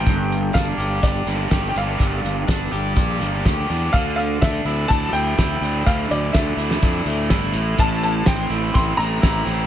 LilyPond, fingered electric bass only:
\new Staff \with { instrumentName = "Fingered electric bass" } { \clef bass \time 4/4 \key g \dorian \tempo 4 = 124 g,,4 g,,8 g,,8 g,,8 g,,8 g,,8 g,,8 | g,,8 g,,8 g,,8 g,,8 bes,,8 g,,8 d,8 e,8 | d,4 d,8 d,8 d,8 d,8 d,8 d,8 | d,8 d,8 d,8 d,8 f,8 d,8 g,,8 a,,8 |
a,,4 a,,8 a,,8 a,,8 a,,8 a,,8 a,,8 | }